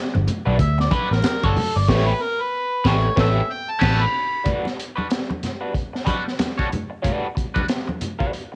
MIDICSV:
0, 0, Header, 1, 7, 480
1, 0, Start_track
1, 0, Tempo, 644468
1, 1404, Time_signature, 4, 2, 24, 8
1, 6370, End_track
2, 0, Start_track
2, 0, Title_t, "Harmonica"
2, 0, Program_c, 0, 22
2, 451, Note_on_c, 0, 76, 94
2, 582, Note_off_c, 0, 76, 0
2, 599, Note_on_c, 0, 74, 76
2, 684, Note_off_c, 0, 74, 0
2, 699, Note_on_c, 0, 71, 76
2, 845, Note_on_c, 0, 70, 83
2, 856, Note_off_c, 0, 71, 0
2, 1088, Note_on_c, 0, 69, 95
2, 1099, Note_off_c, 0, 70, 0
2, 1321, Note_on_c, 0, 74, 84
2, 1332, Note_off_c, 0, 69, 0
2, 1416, Note_on_c, 0, 73, 89
2, 1427, Note_off_c, 0, 74, 0
2, 1546, Note_on_c, 0, 71, 92
2, 1557, Note_off_c, 0, 73, 0
2, 1651, Note_on_c, 0, 70, 102
2, 1662, Note_off_c, 0, 71, 0
2, 1796, Note_on_c, 0, 71, 93
2, 1807, Note_off_c, 0, 70, 0
2, 2127, Note_off_c, 0, 71, 0
2, 2133, Note_on_c, 0, 73, 93
2, 2351, Note_off_c, 0, 73, 0
2, 2384, Note_on_c, 0, 69, 77
2, 2384, Note_on_c, 0, 73, 77
2, 2384, Note_on_c, 0, 76, 111
2, 2437, Note_off_c, 0, 69, 0
2, 2438, Note_off_c, 0, 73, 0
2, 2620, Note_on_c, 0, 79, 100
2, 2631, Note_off_c, 0, 76, 0
2, 2757, Note_on_c, 0, 81, 103
2, 2768, Note_off_c, 0, 79, 0
2, 2994, Note_on_c, 0, 83, 118
2, 3005, Note_off_c, 0, 81, 0
2, 3326, Note_off_c, 0, 83, 0
2, 6370, End_track
3, 0, Start_track
3, 0, Title_t, "Clean electric guitar"
3, 0, Program_c, 1, 27
3, 339, Note_on_c, 1, 71, 82
3, 342, Note_on_c, 1, 66, 75
3, 345, Note_on_c, 1, 55, 71
3, 345, Note_on_c, 1, 62, 69
3, 425, Note_off_c, 1, 55, 0
3, 427, Note_off_c, 1, 62, 0
3, 430, Note_off_c, 1, 66, 0
3, 431, Note_off_c, 1, 71, 0
3, 675, Note_on_c, 1, 55, 77
3, 681, Note_on_c, 1, 62, 83
3, 681, Note_on_c, 1, 66, 82
3, 683, Note_on_c, 1, 71, 98
3, 807, Note_off_c, 1, 71, 0
3, 810, Note_off_c, 1, 66, 0
3, 815, Note_off_c, 1, 62, 0
3, 830, Note_off_c, 1, 55, 0
3, 1069, Note_on_c, 1, 73, 104
3, 1075, Note_on_c, 1, 66, 86
3, 1078, Note_on_c, 1, 62, 79
3, 1082, Note_on_c, 1, 55, 76
3, 1165, Note_off_c, 1, 55, 0
3, 1167, Note_off_c, 1, 62, 0
3, 1167, Note_off_c, 1, 66, 0
3, 1173, Note_off_c, 1, 73, 0
3, 1401, Note_on_c, 1, 57, 120
3, 1408, Note_on_c, 1, 61, 110
3, 1411, Note_on_c, 1, 67, 111
3, 1411, Note_on_c, 1, 71, 114
3, 1573, Note_off_c, 1, 57, 0
3, 1577, Note_off_c, 1, 61, 0
3, 1579, Note_off_c, 1, 67, 0
3, 1579, Note_off_c, 1, 71, 0
3, 2115, Note_on_c, 1, 71, 103
3, 2123, Note_on_c, 1, 67, 115
3, 2126, Note_on_c, 1, 61, 108
3, 2130, Note_on_c, 1, 57, 110
3, 2290, Note_off_c, 1, 71, 0
3, 2294, Note_off_c, 1, 67, 0
3, 2296, Note_off_c, 1, 61, 0
3, 2298, Note_off_c, 1, 57, 0
3, 2354, Note_on_c, 1, 71, 107
3, 2357, Note_on_c, 1, 67, 112
3, 2361, Note_on_c, 1, 61, 110
3, 2364, Note_on_c, 1, 57, 118
3, 2529, Note_off_c, 1, 71, 0
3, 2531, Note_off_c, 1, 67, 0
3, 2533, Note_off_c, 1, 61, 0
3, 2535, Note_off_c, 1, 57, 0
3, 2824, Note_on_c, 1, 57, 108
3, 2825, Note_on_c, 1, 61, 117
3, 2832, Note_on_c, 1, 67, 105
3, 2836, Note_on_c, 1, 71, 110
3, 3003, Note_off_c, 1, 57, 0
3, 3004, Note_off_c, 1, 61, 0
3, 3008, Note_off_c, 1, 67, 0
3, 3010, Note_off_c, 1, 71, 0
3, 3308, Note_on_c, 1, 55, 67
3, 3313, Note_on_c, 1, 62, 77
3, 3315, Note_on_c, 1, 66, 77
3, 3319, Note_on_c, 1, 71, 86
3, 3465, Note_off_c, 1, 55, 0
3, 3468, Note_off_c, 1, 62, 0
3, 3468, Note_off_c, 1, 66, 0
3, 3470, Note_off_c, 1, 71, 0
3, 3691, Note_on_c, 1, 71, 56
3, 3699, Note_on_c, 1, 66, 52
3, 3701, Note_on_c, 1, 62, 52
3, 3706, Note_on_c, 1, 55, 49
3, 3778, Note_off_c, 1, 71, 0
3, 3780, Note_off_c, 1, 55, 0
3, 3782, Note_off_c, 1, 66, 0
3, 3783, Note_off_c, 1, 62, 0
3, 4176, Note_on_c, 1, 71, 67
3, 4179, Note_on_c, 1, 66, 65
3, 4185, Note_on_c, 1, 55, 59
3, 4185, Note_on_c, 1, 62, 56
3, 4265, Note_off_c, 1, 55, 0
3, 4268, Note_off_c, 1, 62, 0
3, 4273, Note_off_c, 1, 66, 0
3, 4273, Note_off_c, 1, 71, 0
3, 4504, Note_on_c, 1, 55, 76
3, 4512, Note_on_c, 1, 62, 77
3, 4513, Note_on_c, 1, 66, 84
3, 4514, Note_on_c, 1, 71, 78
3, 4645, Note_off_c, 1, 71, 0
3, 4653, Note_off_c, 1, 66, 0
3, 4657, Note_off_c, 1, 62, 0
3, 4664, Note_off_c, 1, 55, 0
3, 4898, Note_on_c, 1, 73, 72
3, 4904, Note_on_c, 1, 62, 67
3, 4905, Note_on_c, 1, 66, 71
3, 4910, Note_on_c, 1, 55, 68
3, 4983, Note_off_c, 1, 55, 0
3, 4986, Note_off_c, 1, 66, 0
3, 4987, Note_off_c, 1, 62, 0
3, 4992, Note_off_c, 1, 73, 0
3, 5231, Note_on_c, 1, 55, 83
3, 5236, Note_on_c, 1, 66, 82
3, 5237, Note_on_c, 1, 62, 84
3, 5243, Note_on_c, 1, 71, 92
3, 5405, Note_off_c, 1, 55, 0
3, 5407, Note_off_c, 1, 66, 0
3, 5408, Note_off_c, 1, 62, 0
3, 5411, Note_off_c, 1, 71, 0
3, 5618, Note_on_c, 1, 71, 59
3, 5622, Note_on_c, 1, 62, 45
3, 5623, Note_on_c, 1, 66, 52
3, 5625, Note_on_c, 1, 55, 49
3, 5703, Note_off_c, 1, 71, 0
3, 5705, Note_off_c, 1, 55, 0
3, 5705, Note_off_c, 1, 62, 0
3, 5705, Note_off_c, 1, 66, 0
3, 6098, Note_on_c, 1, 71, 72
3, 6103, Note_on_c, 1, 66, 73
3, 6108, Note_on_c, 1, 55, 50
3, 6109, Note_on_c, 1, 62, 65
3, 6187, Note_off_c, 1, 62, 0
3, 6188, Note_off_c, 1, 55, 0
3, 6192, Note_off_c, 1, 66, 0
3, 6197, Note_off_c, 1, 71, 0
3, 6370, End_track
4, 0, Start_track
4, 0, Title_t, "Picked electric bass"
4, 0, Program_c, 2, 34
4, 116, Note_on_c, 2, 31, 89
4, 196, Note_off_c, 2, 31, 0
4, 349, Note_on_c, 2, 35, 99
4, 432, Note_off_c, 2, 35, 0
4, 442, Note_on_c, 2, 38, 93
4, 650, Note_off_c, 2, 38, 0
4, 827, Note_on_c, 2, 33, 89
4, 911, Note_off_c, 2, 33, 0
4, 1072, Note_on_c, 2, 31, 89
4, 1153, Note_off_c, 2, 31, 0
4, 1312, Note_on_c, 2, 31, 96
4, 1393, Note_off_c, 2, 31, 0
4, 1403, Note_on_c, 2, 33, 117
4, 1575, Note_off_c, 2, 33, 0
4, 2124, Note_on_c, 2, 33, 124
4, 2295, Note_off_c, 2, 33, 0
4, 2363, Note_on_c, 2, 33, 100
4, 2534, Note_off_c, 2, 33, 0
4, 2846, Note_on_c, 2, 33, 101
4, 3016, Note_off_c, 2, 33, 0
4, 6370, End_track
5, 0, Start_track
5, 0, Title_t, "Muted clean electric guitar strokes"
5, 103, Note_on_c, 9, 29, 42
5, 177, Note_off_c, 9, 29, 0
5, 581, Note_on_c, 9, 29, 61
5, 656, Note_off_c, 9, 29, 0
5, 816, Note_on_c, 9, 29, 41
5, 891, Note_off_c, 9, 29, 0
5, 924, Note_on_c, 9, 29, 42
5, 998, Note_off_c, 9, 29, 0
5, 1174, Note_on_c, 9, 29, 38
5, 1248, Note_off_c, 9, 29, 0
5, 1317, Note_on_c, 9, 29, 46
5, 1391, Note_off_c, 9, 29, 0
5, 3550, Note_on_c, 9, 29, 37
5, 3624, Note_off_c, 9, 29, 0
5, 3789, Note_on_c, 9, 29, 36
5, 3864, Note_off_c, 9, 29, 0
5, 3946, Note_on_c, 9, 29, 40
5, 4021, Note_off_c, 9, 29, 0
5, 4274, Note_on_c, 9, 29, 40
5, 4349, Note_off_c, 9, 29, 0
5, 4419, Note_on_c, 9, 29, 44
5, 4493, Note_off_c, 9, 29, 0
5, 4654, Note_on_c, 9, 29, 45
5, 4729, Note_off_c, 9, 29, 0
5, 4759, Note_on_c, 9, 29, 35
5, 4834, Note_off_c, 9, 29, 0
5, 4992, Note_on_c, 9, 29, 36
5, 5067, Note_off_c, 9, 29, 0
5, 5137, Note_on_c, 9, 29, 46
5, 5212, Note_off_c, 9, 29, 0
5, 5475, Note_on_c, 9, 29, 33
5, 5549, Note_off_c, 9, 29, 0
5, 5714, Note_on_c, 9, 29, 41
5, 5788, Note_off_c, 9, 29, 0
5, 5866, Note_on_c, 9, 29, 42
5, 5941, Note_off_c, 9, 29, 0
5, 6196, Note_on_c, 9, 29, 45
5, 6270, Note_off_c, 9, 29, 0
5, 6346, Note_on_c, 9, 29, 40
5, 6370, Note_off_c, 9, 29, 0
5, 6370, End_track
6, 0, Start_track
6, 0, Title_t, "Muted picked electric bass strokes"
6, 930, Note_on_c, 9, 29, 54
6, 1005, Note_off_c, 9, 29, 0
6, 6370, End_track
7, 0, Start_track
7, 0, Title_t, "Drums"
7, 110, Note_on_c, 9, 62, 39
7, 110, Note_on_c, 9, 63, 82
7, 185, Note_off_c, 9, 62, 0
7, 185, Note_off_c, 9, 63, 0
7, 204, Note_on_c, 9, 64, 83
7, 207, Note_on_c, 9, 42, 73
7, 279, Note_off_c, 9, 64, 0
7, 281, Note_off_c, 9, 42, 0
7, 441, Note_on_c, 9, 36, 84
7, 441, Note_on_c, 9, 42, 86
7, 450, Note_on_c, 9, 62, 36
7, 515, Note_off_c, 9, 36, 0
7, 516, Note_off_c, 9, 42, 0
7, 524, Note_off_c, 9, 62, 0
7, 585, Note_on_c, 9, 62, 32
7, 596, Note_on_c, 9, 38, 37
7, 659, Note_off_c, 9, 62, 0
7, 670, Note_off_c, 9, 38, 0
7, 676, Note_on_c, 9, 63, 89
7, 680, Note_on_c, 9, 36, 97
7, 681, Note_on_c, 9, 42, 80
7, 751, Note_off_c, 9, 63, 0
7, 754, Note_off_c, 9, 36, 0
7, 756, Note_off_c, 9, 42, 0
7, 837, Note_on_c, 9, 38, 42
7, 912, Note_off_c, 9, 38, 0
7, 912, Note_on_c, 9, 63, 73
7, 920, Note_on_c, 9, 39, 102
7, 921, Note_on_c, 9, 42, 108
7, 925, Note_on_c, 9, 38, 105
7, 986, Note_off_c, 9, 63, 0
7, 995, Note_off_c, 9, 39, 0
7, 995, Note_off_c, 9, 42, 0
7, 999, Note_off_c, 9, 38, 0
7, 1068, Note_on_c, 9, 36, 102
7, 1143, Note_off_c, 9, 36, 0
7, 1165, Note_on_c, 9, 46, 80
7, 1165, Note_on_c, 9, 63, 87
7, 1165, Note_on_c, 9, 64, 88
7, 1240, Note_off_c, 9, 46, 0
7, 1240, Note_off_c, 9, 63, 0
7, 1240, Note_off_c, 9, 64, 0
7, 1403, Note_on_c, 9, 36, 101
7, 1404, Note_on_c, 9, 49, 78
7, 1408, Note_on_c, 9, 38, 102
7, 1478, Note_off_c, 9, 36, 0
7, 1478, Note_off_c, 9, 49, 0
7, 1483, Note_off_c, 9, 38, 0
7, 2121, Note_on_c, 9, 36, 111
7, 2125, Note_on_c, 9, 38, 117
7, 2196, Note_off_c, 9, 36, 0
7, 2199, Note_off_c, 9, 38, 0
7, 2362, Note_on_c, 9, 36, 107
7, 2367, Note_on_c, 9, 38, 103
7, 2437, Note_off_c, 9, 36, 0
7, 2442, Note_off_c, 9, 38, 0
7, 2840, Note_on_c, 9, 49, 88
7, 2842, Note_on_c, 9, 36, 115
7, 2844, Note_on_c, 9, 38, 100
7, 2914, Note_off_c, 9, 49, 0
7, 2916, Note_off_c, 9, 36, 0
7, 2919, Note_off_c, 9, 38, 0
7, 3319, Note_on_c, 9, 42, 70
7, 3320, Note_on_c, 9, 64, 71
7, 3322, Note_on_c, 9, 36, 96
7, 3393, Note_off_c, 9, 42, 0
7, 3394, Note_off_c, 9, 64, 0
7, 3397, Note_off_c, 9, 36, 0
7, 3464, Note_on_c, 9, 62, 38
7, 3476, Note_on_c, 9, 38, 28
7, 3539, Note_off_c, 9, 62, 0
7, 3550, Note_off_c, 9, 38, 0
7, 3572, Note_on_c, 9, 42, 77
7, 3646, Note_off_c, 9, 42, 0
7, 3711, Note_on_c, 9, 63, 78
7, 3785, Note_off_c, 9, 63, 0
7, 3800, Note_on_c, 9, 62, 34
7, 3802, Note_on_c, 9, 42, 89
7, 3810, Note_on_c, 9, 38, 90
7, 3874, Note_off_c, 9, 62, 0
7, 3877, Note_off_c, 9, 42, 0
7, 3884, Note_off_c, 9, 38, 0
7, 3951, Note_on_c, 9, 63, 73
7, 4026, Note_off_c, 9, 63, 0
7, 4045, Note_on_c, 9, 42, 65
7, 4047, Note_on_c, 9, 64, 60
7, 4054, Note_on_c, 9, 38, 30
7, 4119, Note_off_c, 9, 42, 0
7, 4122, Note_off_c, 9, 64, 0
7, 4129, Note_off_c, 9, 38, 0
7, 4279, Note_on_c, 9, 36, 77
7, 4281, Note_on_c, 9, 42, 69
7, 4353, Note_off_c, 9, 36, 0
7, 4355, Note_off_c, 9, 42, 0
7, 4434, Note_on_c, 9, 38, 32
7, 4509, Note_off_c, 9, 38, 0
7, 4519, Note_on_c, 9, 36, 78
7, 4519, Note_on_c, 9, 42, 63
7, 4524, Note_on_c, 9, 63, 79
7, 4593, Note_off_c, 9, 36, 0
7, 4593, Note_off_c, 9, 42, 0
7, 4598, Note_off_c, 9, 63, 0
7, 4676, Note_on_c, 9, 38, 32
7, 4750, Note_off_c, 9, 38, 0
7, 4760, Note_on_c, 9, 42, 99
7, 4763, Note_on_c, 9, 38, 91
7, 4763, Note_on_c, 9, 62, 27
7, 4763, Note_on_c, 9, 63, 61
7, 4834, Note_off_c, 9, 42, 0
7, 4837, Note_off_c, 9, 62, 0
7, 4837, Note_off_c, 9, 63, 0
7, 4838, Note_off_c, 9, 38, 0
7, 4910, Note_on_c, 9, 36, 91
7, 4914, Note_on_c, 9, 62, 31
7, 4984, Note_off_c, 9, 36, 0
7, 4988, Note_off_c, 9, 62, 0
7, 5008, Note_on_c, 9, 42, 62
7, 5014, Note_on_c, 9, 63, 72
7, 5014, Note_on_c, 9, 64, 79
7, 5083, Note_off_c, 9, 42, 0
7, 5088, Note_off_c, 9, 63, 0
7, 5088, Note_off_c, 9, 64, 0
7, 5247, Note_on_c, 9, 36, 90
7, 5247, Note_on_c, 9, 42, 83
7, 5254, Note_on_c, 9, 64, 72
7, 5321, Note_off_c, 9, 36, 0
7, 5322, Note_off_c, 9, 42, 0
7, 5328, Note_off_c, 9, 64, 0
7, 5489, Note_on_c, 9, 36, 80
7, 5496, Note_on_c, 9, 42, 68
7, 5564, Note_off_c, 9, 36, 0
7, 5570, Note_off_c, 9, 42, 0
7, 5631, Note_on_c, 9, 36, 84
7, 5640, Note_on_c, 9, 63, 86
7, 5705, Note_off_c, 9, 36, 0
7, 5714, Note_off_c, 9, 63, 0
7, 5725, Note_on_c, 9, 42, 83
7, 5728, Note_on_c, 9, 62, 35
7, 5732, Note_on_c, 9, 38, 89
7, 5799, Note_off_c, 9, 42, 0
7, 5802, Note_off_c, 9, 62, 0
7, 5807, Note_off_c, 9, 38, 0
7, 5876, Note_on_c, 9, 63, 74
7, 5950, Note_off_c, 9, 63, 0
7, 5967, Note_on_c, 9, 42, 66
7, 5971, Note_on_c, 9, 64, 69
7, 6042, Note_off_c, 9, 42, 0
7, 6045, Note_off_c, 9, 64, 0
7, 6111, Note_on_c, 9, 36, 83
7, 6185, Note_off_c, 9, 36, 0
7, 6207, Note_on_c, 9, 42, 76
7, 6211, Note_on_c, 9, 62, 32
7, 6281, Note_off_c, 9, 42, 0
7, 6286, Note_off_c, 9, 62, 0
7, 6370, End_track
0, 0, End_of_file